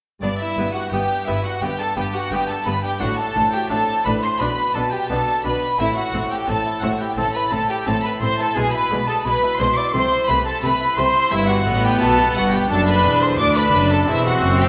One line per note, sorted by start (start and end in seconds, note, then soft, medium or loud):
0.22 0.30 G1 medium
0.22 0.30 G2 medium
0.22 0.54 G2 medium
0.22 0.30 B3 medium
0.22 0.29 D4 medium
0.22 0.28 D5 medium
0.22 0.39 D5 loud
0.39 0.58 D4 soft
0.39 0.74 E4 medium
0.39 0.75 E5 medium
0.39 0.76 E5 medium
0.57 0.65 G1 medium
0.57 0.65 G2 medium
0.57 0.89 G2 medium
0.57 0.66 B3 medium
0.57 0.76 B4 medium
0.74 0.92 F#4 medium
0.74 0.94 G4 medium
0.74 0.92 F#5 medium
0.74 0.91 F#5 medium
0.91 1.01 G1 medium
0.91 1.00 G2 medium
0.91 1.24 G2 medium
0.91 1.01 B3 medium
0.91 1.11 B3 medium
0.91 1.26 G4 medium
0.91 1.26 G5 medium
0.91 1.27 G5 loud
1.11 1.29 D4 medium
1.26 1.36 G1 medium
1.26 1.35 G2 medium
1.26 1.59 G2 medium
1.26 1.36 B3 medium
1.26 1.45 E4 medium
1.26 1.46 B4 medium
1.26 1.43 E5 medium
1.26 1.44 E5 medium
1.44 1.63 D4 medium
1.44 1.62 F#4 medium
1.44 1.60 F#5 medium
1.44 1.62 F#5 medium
1.61 1.70 G1 medium
1.61 1.70 G2 medium
1.61 1.93 G2 medium
1.61 1.71 B3 medium
1.61 1.80 G4 medium
1.61 1.67 G5 medium
1.61 1.80 G5 loud
1.79 1.97 D4 medium
1.79 1.97 A4 medium
1.79 1.96 A5 medium
1.79 1.87 A5 medium
1.96 2.05 G1 medium
1.96 2.28 G2 medium
1.96 2.05 G2 medium
1.96 2.05 B3 medium
1.96 2.14 G4 medium
1.96 2.15 B4 medium
1.96 2.02 G5 medium
1.96 2.05 G5 medium
2.13 2.32 F#4 medium
2.13 2.33 G4 medium
2.13 2.29 F#5 medium
2.13 2.32 F#5 medium
2.30 2.40 G1 medium
2.30 2.39 G2 medium
2.30 2.63 G2 medium
2.30 2.50 B3 medium
2.30 2.40 B3 medium
2.30 2.49 G4 medium
2.30 2.47 G5 medium
2.30 2.49 G5 loud
2.48 2.67 D4 soft
2.48 2.67 A4 medium
2.48 2.64 A5 medium
2.48 2.66 A5 medium
2.65 2.75 G1 medium
2.65 2.74 G2 medium
2.65 2.97 G2 medium
2.65 2.74 B3 medium
2.65 2.84 B4 medium
2.65 2.82 B5 medium
2.65 2.84 B5 loud
2.83 3.01 D4 soft
2.83 3.01 G4 medium
2.83 2.99 G5 medium
2.83 3.01 G5 medium
3.00 3.10 A1 medium
3.00 3.09 A2 medium
3.00 3.33 A2 medium
3.00 3.09 D4 medium
3.00 3.19 F#4 medium
3.00 3.17 F#5 medium
3.00 3.18 F#5 loud
3.17 3.37 D4 medium
3.17 3.53 A4 medium
3.17 3.52 A5 medium
3.36 3.44 A1 medium
3.36 3.44 A2 medium
3.36 3.67 A2 medium
3.36 3.44 D4 medium
3.36 3.54 C5 medium
3.52 3.72 F#4 medium
3.52 3.71 G4 medium
3.52 3.70 G5 medium
3.52 3.59 G5 medium
3.70 3.79 A1 medium
3.70 3.78 A2 medium
3.70 4.02 A2 medium
3.70 3.89 C4 medium
3.70 3.78 D4 medium
3.70 4.05 A4 medium
3.70 4.04 A5 medium
3.70 4.04 A5 loud
3.88 4.06 D4 medium
4.04 4.14 A1 medium
4.04 4.14 A2 medium
4.04 4.37 A2 medium
4.04 4.14 D4 medium
4.04 4.23 B4 medium
4.04 4.24 C5 medium
4.04 4.10 B5 medium
4.04 4.12 B5 loud
4.22 4.40 D4 medium
4.22 4.41 C5 medium
4.22 4.40 C6 medium
4.22 4.31 C6 loud
4.39 4.49 B1 medium
4.39 4.48 B2 medium
4.39 4.72 B2 medium
4.39 4.48 D4 medium
4.39 4.75 B4 medium
4.39 4.76 B5 medium
4.39 4.75 B5 loud
4.58 4.76 D4 soft
4.75 4.84 B1 medium
4.75 4.83 B2 medium
4.75 5.07 B2 medium
4.75 4.83 D4 medium
4.75 4.82 A4 medium
4.75 4.94 B4 medium
4.75 4.95 A5 medium
4.75 4.93 A5 medium
4.93 5.11 G4 medium
4.93 5.10 G4 medium
4.93 5.09 G5 medium
4.93 5.10 G5 medium
5.09 5.18 B1 medium
5.09 5.18 B2 medium
5.09 5.42 B2 medium
5.09 5.28 B3 medium
5.09 5.17 D4 medium
5.09 5.44 A4 medium
5.09 5.45 A5 loud
5.09 5.44 A5 medium
5.27 5.46 D4 medium
5.44 5.53 B1 medium
5.44 5.76 B2 medium
5.44 5.53 B2 medium
5.44 5.52 D4 medium
5.44 5.63 B4 medium
5.44 5.79 B4 medium
5.44 5.81 B5 medium
5.44 5.79 B5 loud
5.62 5.80 D4 soft
5.79 5.87 A1 medium
5.79 5.88 A2 medium
5.79 6.11 A2 medium
5.79 5.87 C4 medium
5.79 5.97 E4 medium
5.79 5.98 E5 medium
5.79 5.87 E5 loud
5.96 6.15 E4 medium
5.96 6.31 F#4 medium
5.96 6.30 F#5 medium
5.96 6.33 F#5 medium
6.13 6.21 A1 medium
6.13 6.45 A2 medium
6.13 6.22 A2 medium
6.13 6.22 C4 medium
6.13 6.32 C5 medium
6.30 6.49 G4 medium
6.30 6.49 A4 medium
6.30 6.38 G5 medium
6.30 6.50 G5 medium
6.47 6.56 A1 medium
6.47 6.57 A2 medium
6.47 6.80 A2 medium
6.47 6.56 C4 medium
6.47 6.67 C4 medium
6.47 6.83 A4 medium
6.47 6.82 A5 loud
6.47 6.85 A5 medium
6.66 6.84 E4 medium
6.81 6.91 A1 medium
6.81 6.91 A2 medium
6.81 7.15 A2 medium
6.81 6.91 C4 medium
6.81 7.00 F#4 medium
6.81 7.01 C5 medium
6.81 6.89 F#5 medium
6.81 7.02 F#5 medium
6.98 7.19 E4 medium
6.98 7.17 G4 medium
6.98 7.16 G5 medium
6.98 7.20 G5 medium
7.16 7.26 A1 medium
7.16 7.26 A2 medium
7.16 7.49 A2 medium
7.16 7.24 C4 medium
7.16 7.34 A4 medium
7.16 7.34 A5 loud
7.16 7.38 A5 medium
7.33 7.54 E4 medium
7.33 7.42 B4 medium
7.33 7.51 B5 medium
7.33 7.54 B5 medium
7.51 7.60 A1 medium
7.51 7.84 A2 medium
7.51 7.61 A2 medium
7.51 7.59 C4 medium
7.51 7.69 A4 medium
7.51 7.71 C5 medium
7.51 7.69 A5 medium
7.69 7.87 G4 medium
7.69 7.88 A4 medium
7.69 7.87 G5 medium
7.69 7.76 G5 medium
7.86 7.95 A1 medium
7.86 8.18 A2 medium
7.86 7.96 A2 medium
7.86 7.94 C4 medium
7.86 8.05 C4 medium
7.86 8.05 A4 medium
7.86 8.04 A5 loud
7.86 7.93 A5 medium
8.04 8.23 E4 medium
8.04 8.12 B4 medium
8.04 8.10 B5 medium
8.04 8.21 B5 medium
8.21 8.30 A1 medium
8.21 8.52 A2 medium
8.21 8.30 A2 medium
8.21 8.30 C4 medium
8.21 8.40 C5 medium
8.21 8.39 C5 loud
8.21 8.38 C6 loud
8.21 8.28 C6 medium
8.39 8.56 E4 medium
8.39 8.56 A4 medium
8.39 8.56 A5 loud
8.39 8.57 A5 medium
8.54 8.64 B1 medium
8.54 8.64 B2 medium
8.54 8.88 B2 medium
8.54 8.65 G#3 medium
8.54 8.74 G#4 medium
8.54 8.73 G#5 loud
8.54 8.72 G#5 medium
8.73 8.92 E4 medium
8.73 9.08 B4 medium
8.73 9.07 B5 loud
8.73 9.09 B5 medium
8.90 8.98 B1 medium
8.90 9.22 B2 medium
8.90 8.99 B2 medium
8.90 8.99 G#3 medium
8.90 9.09 D5 medium
9.06 9.26 G#4 medium
9.06 9.16 A4 medium
9.06 9.24 A5 medium
9.06 9.27 A5 medium
9.23 9.33 B1 medium
9.23 9.33 B2 medium
9.23 9.56 B2 medium
9.23 9.34 G#3 medium
9.23 9.44 D4 medium
9.23 9.59 B4 medium
9.23 9.58 B5 loud
9.23 9.61 B5 medium
9.43 9.61 E4 medium
9.58 9.68 B1 medium
9.58 9.67 B2 medium
9.58 9.91 B2 medium
9.58 9.68 G#3 medium
9.58 9.76 C5 medium
9.58 9.78 D5 medium
9.58 9.76 C6 loud
9.58 9.78 C6 medium
9.76 9.94 E4 medium
9.76 9.84 D5 medium
9.76 9.94 D6 loud
9.76 9.94 D6 medium
9.93 10.02 C2 medium
9.93 10.02 C3 medium
9.93 10.26 C3 medium
9.93 10.01 A3 medium
9.93 10.28 C5 medium
9.93 10.27 C6 medium
9.93 10.28 C6 loud
10.12 10.30 E4 medium
10.27 10.37 C2 medium
10.27 10.36 C3 medium
10.27 10.60 C3 medium
10.27 10.37 A3 medium
10.27 10.46 B4 medium
10.27 10.47 C5 medium
10.27 10.44 B5 medium
10.27 10.46 B5 loud
10.45 10.64 A4 medium
10.45 10.61 A5 medium
10.45 10.63 A5 loud
10.62 10.71 C2 medium
10.62 10.71 C3 medium
10.62 10.94 C3 medium
10.62 10.71 A3 medium
10.62 10.81 C4 medium
10.62 10.97 B4 medium
10.62 10.98 B5 medium
10.62 10.97 B5 loud
10.80 10.98 E4 medium
10.96 11.06 C2 medium
10.96 11.05 C3 medium
10.96 11.29 C3 medium
10.96 11.04 A3 medium
10.96 11.32 C5 loud
10.96 11.16 C5 medium
10.96 11.31 C6 medium
10.96 11.32 C6 loud
11.15 11.32 E4 medium
11.31 11.64 G1 medium
11.31 11.64 G2 medium
11.31 11.63 G2 medium
11.31 12.65 B3 loud
11.31 11.49 E4 medium
11.31 11.50 E5 loud
11.49 11.83 F#4 medium
11.49 11.67 G4 medium
11.49 11.86 F#5 medium
11.49 11.84 F#5 loud
11.66 12.00 A1 medium
11.66 11.97 A2 medium
11.66 12.00 A2 medium
11.66 11.85 E5 medium
11.84 12.01 G4 medium
11.84 12.02 B4 medium
11.84 12.03 G5 medium
11.84 12.02 G5 loud
12.01 12.35 B1 medium
12.01 12.32 B2 medium
12.01 12.35 B2 medium
12.01 12.19 E4 medium
12.01 12.36 A4 medium
12.01 12.35 A5 loud
12.01 12.36 A5 loud
12.18 12.36 G4 medium
12.34 12.69 G1 medium
12.34 12.69 G2 medium
12.34 12.66 G2 medium
12.34 12.54 F#4 medium
12.34 12.54 E5 medium
12.34 12.52 F#5 loud
12.34 12.54 F#5 medium
12.52 12.70 G4 medium
12.52 12.71 G4 medium
12.52 12.70 G5 medium
12.52 12.72 G5 medium
12.69 13.04 F#1 medium
12.69 13.04 F#2 medium
12.69 13.01 F#2 medium
12.69 13.38 D4 medium
12.69 12.78 A4 loud
12.69 12.87 A5 loud
12.69 12.87 A5 medium
12.87 13.05 A4 medium
12.87 13.22 B4 loud
12.87 13.21 B5 loud
13.04 13.39 E1 medium
13.04 13.39 E2 medium
13.04 13.36 E2 medium
13.04 13.23 D5 medium
13.22 13.40 A4 medium
13.22 13.39 C5 medium
13.22 13.39 C6 loud
13.22 13.28 C6 medium
13.39 13.70 D2 medium
13.39 13.74 D2 medium
13.39 13.57 D4 medium
13.39 14.07 D4 medium
13.39 13.57 D5 loud
13.39 13.56 D6 loud
13.39 13.58 D6 loud
13.56 13.74 A4 medium
13.56 13.91 B4 loud
13.56 13.93 B5 medium
13.56 13.91 B5 loud
13.72 14.08 F#1 medium
13.72 14.04 F#2 medium
13.72 14.07 F#2 medium
13.72 13.91 D5 medium
13.90 14.08 A4 medium
13.90 14.09 A5 medium
14.08 14.42 E1 medium
14.08 14.39 E2 medium
14.08 14.42 E2 medium
14.08 14.69 C4 loud
14.08 14.26 E4 loud
14.08 14.25 E5 medium
14.08 14.26 E5 loud
14.25 14.60 F#4 loud
14.25 14.43 G4 medium
14.25 14.59 F#5 loud
14.25 14.60 F#5 loud
14.43 14.69 F#1 medium
14.43 14.69 F#2 medium
14.43 14.61 E5 medium
14.59 14.69 G4 medium
14.59 14.69 C5 medium
14.59 14.65 G5 medium
14.59 14.67 G5 loud